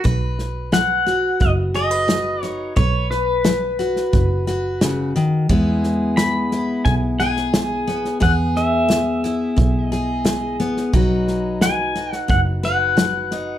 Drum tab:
HH |----p-------p---|----p-------p---|----p-------p---|----p-------p---|
SD |o-o-o-o-o-o-o-o-|o-o-o-ooo-o-o-o-|o-o-o-o-o-ooo-oo|o-o-o-o-o-o-o-oo|
BD |o-------o-------|o-------o-------|o-------o-------|o-------o-------|

HH |----p-------p---|
SD |o-o-o-ooo-o-o-o-|
BD |o-------o-------|